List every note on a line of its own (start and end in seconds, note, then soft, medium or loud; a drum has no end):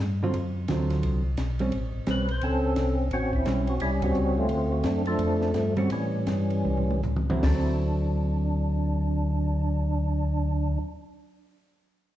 0.00 0.33 G2 medium
0.23 0.34 D3 medium
0.23 0.34 F#3 medium
0.23 0.34 C4 medium
0.23 0.34 F4 medium
0.34 0.68 F#2 medium
0.34 ride medium
0.68 1.02 D2 medium
0.68 1.21 D3 soft
0.68 1.21 F#3 soft
0.68 1.21 C4 medium
0.68 1.22 F4 medium
0.68 snare medium
0.68 hi-hat pedal medium
0.68 ride medium
0.90 snare soft
0.90 ride soft
1.03 1.37 C2 medium
1.03 ride medium
1.37 1.71 B1 medium
1.37 snare medium
1.37 hi-hat pedal soft
1.37 ride medium
1.59 1.72 G3 medium
1.59 1.72 C4 medium
1.59 1.72 C#4 medium
1.59 ride soft
1.72 1.93 A1 medium
1.72 ride medium
1.94 2.01 A1 soft
2.07 2.40 B1 medium
2.07 2.27 G3 medium
2.07 2.27 C4 soft
2.07 2.27 C#4 medium
2.07 snare medium
2.07 hi-hat pedal soft
2.07 ride medium
2.11 2.31 B4 medium
2.29 2.43 C5 medium
2.29 ride soft
2.41 2.75 C#2 medium
2.41 3.08 C4 medium
2.41 3.08 C#4 medium
2.41 2.95 A4 medium
2.41 ride medium
2.76 3.10 C2 medium
2.76 snare medium
2.76 hi-hat pedal medium
2.76 ride medium
3.11 3.44 A1 medium
3.11 3.77 C4 medium
3.11 3.77 C#4 medium
3.11 3.32 F#4 loud
3.11 ride medium
3.33 3.46 E4 medium
3.33 kick medium
3.46 3.79 B1 medium
3.46 3.66 G3 medium
3.46 3.66 C4 medium
3.46 3.66 C#4 medium
3.46 3.69 E4 medium
3.46 snare medium
3.46 hi-hat pedal soft
3.46 ride medium
3.67 3.80 F#4 medium
3.67 ride soft
3.80 4.14 C2 medium
3.80 4.46 G3 medium
3.80 4.03 C#4 medium
3.80 3.91 E4 medium
3.80 ride medium
4.02 4.37 C4 medium
4.02 4.47 C#4 medium
4.02 4.38 F#4 loud
4.02 kick medium
4.02 ride medium
4.14 4.48 C#2 medium
4.14 hi-hat pedal medium
4.38 5.03 A3 medium
4.38 5.03 C4 medium
4.38 4.69 F4 loud
4.49 4.83 D2 medium
4.49 ride medium
4.72 4.85 F#4 medium
4.84 5.18 F#2 medium
4.84 5.05 D4 medium
4.84 snare medium
4.84 hi-hat pedal soft
4.84 ride medium
5.05 5.74 F3 medium
5.05 5.74 A3 medium
5.05 5.52 D4 loud
5.05 ride soft
5.19 5.53 F2 medium
5.19 ride medium
5.42 snare soft
5.54 5.89 G2 medium
5.54 snare medium
5.54 hi-hat pedal medium
5.54 ride medium
5.76 5.89 G3 medium
5.76 5.90 C4 medium
5.76 5.90 C#4 medium
5.76 5.90 F#4 medium
5.76 ride soft
5.90 6.26 A2 medium
5.90 7.01 E3 medium
5.90 7.01 G3 medium
5.90 7.01 C#4 medium
5.90 ride medium
6.27 6.64 G2 medium
6.27 snare medium
6.27 hi-hat pedal medium
6.27 ride medium
6.50 ride soft
6.64 7.02 C2 medium
6.64 high tom soft
6.77 floor tom soft
6.91 high tom medium
7.03 7.42 C#2 medium
7.03 floor tom medium
7.03 hi-hat pedal medium
7.17 mid tom medium
7.30 7.36 D3 medium
7.30 7.43 F#3 medium
7.30 7.43 C4 medium
7.30 7.43 E4 medium
7.30 mid tom medium
7.37 10.75 D3 medium
7.43 10.78 D2 medium
7.43 10.85 F#3 medium
7.43 10.79 D4 medium
7.43 kick loud
7.43 snare loud
7.43 open hi-hat medium
7.55 10.93 C4 medium
7.62 11.01 E4 medium